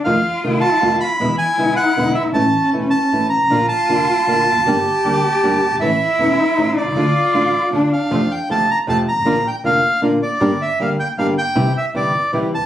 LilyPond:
<<
  \new Staff \with { instrumentName = "Bandoneon" } { \time 3/4 \key d \minor \tempo 4 = 156 f''4 r8 a''4 b''8~ | b''8 gis''4 fis''4 e''8 | a''4 r8 a''4 bes''8~ | bes''8 a''2~ a''8~ |
a''2. | e''2~ e''8 d''8~ | d''2 r8 f''8~ | \key f \major f''8 g''8 a''8 bes''8 a''8 bes''8~ |
bes''8 g''8 f''4 r8 d''8~ | d''8 e''8 f''8 g''8 f''8 g''8~ | g''8 e''8 d''4 r8 a''8 | }
  \new Staff \with { instrumentName = "Bandoneon" } { \time 3/4 \key d \minor r2. | r2. | r2. | <d' f' bes'>8 r8 <d' f' bes'>8 r8 <d' f' bes'>8 r8 |
<d' g' bes'>8 r8 <d' g' bes'>8 r8 <d' g' bes'>8 r8 | <cis' e' a'>8 r8 <cis' e' a'>8 r8 <cis' e' a'>8 r8 | <d' f' a'>8 r8 <d' f' a'>8 r8 <d' f' a'>8 r8 | \key f \major <c' f' a'>8 r8 <c' f' a'>8 r8 <c' f' a'>8 r8 |
<d' f' bes'>8 r8 <d' f' bes'>8 r8 <d' f' bes'>8 r8 | <d' g' bes'>8 r8 <d' g' bes'>8 r8 <d' g' bes'>8 r8 | <c' e' g'>8 r8 <c' e' g'>8 r8 <c' e' g'>8 r8 | }
  \new Staff \with { instrumentName = "Cello" } { \time 3/4 \key d \minor f'2. | e'2. | cis'2~ cis'8 r8 | f'2. |
g'2. | e'2. | f'2 d'4 | \key f \major r2. |
r2. | r2. | r2. | }
  \new Staff \with { instrumentName = "Nylon-string guitar" } { \time 3/4 \key d \minor <c ees a c' f'>16 r8. <c ees a c' f'>8 r8 <c ees a c' f'>8 r8 | <b, d gis b e'>16 r8. <b, d gis b e'>8 r8 <b, d gis b e'>8 r8 | <e a cis' e'>16 r8. <e a cis' e'>8 r8 <e a cis' e'>8 r8 | <d bes d' f'>16 r8. <d bes d' f'>8 r8 <d bes d' f'>8 r8 |
<d g bes d' g'>16 r8. <d g bes d' g'>8 r8 <d g bes d' g'>8 r8 | <e a cis' e'>16 r8. <e a cis' e'>8 r8 <e a cis' e'>8 r8 | <d a d' f'>16 r8. <d a d' f'>8 r8 <d a d' f'>8 r8 | \key f \major <c f a c' f'>16 r8. <c f a c' f'>8 r8 <c f a c' f'>8 r8 |
<d bes d' f'>16 r8. <d bes d' f'>8 r8 <d bes d' f'>8 r8 | <d g bes d' g'>16 r8. <d g bes d' g'>8 r8 <d g bes d' g'>8 r8 | <c e g c' e'>16 r8. <c e g c' e'>8 r8 <c e g c' e'>8 r8 | }
  \new Staff \with { instrumentName = "Upright bass" } { \clef bass \time 3/4 \key d \minor f,16. r8 r32 c,16. r8 r32 f,16. r8 r32 | e,16. r8 r32 b,,16. r8 r32 e,16. r16 fis,,32 g,,32 gis,,32 | a,,16. r8 r32 e,,16. r8 r32 a,,16. r16 g,,32 gis,,32 a,,32 | bes,,16. r8 r32 f,,16. r8 r32 bes,,16. r16 e,,32 f,,32 fis,,32 |
g,,16. r8 r32 d,16. r8 r32 g,,16. r16 fis,,32 g,,32 gis,,32 | a,,16. r8 r32 e,,16. r8 r32 a,,16. r16 b,,32 c,32 cis,32 | d,16. r8 r32 a,,16. r8 r32 d,16. r8 r32 | \key f \major f,16. r8 r32 c,16. r8 r32 f,16. r16 g,,32 aes,,32 a,,32 |
bes,,16. r8 r32 f,,16. r8 r32 bes,,16. r8 r32 | g,,16. r8 r32 d,16. r8 r32 g,,16. r8 r32 | c,16. r8 r32 g,,16. r8 r32 c,16. r16 d,32 ees,32 r32 | }
>>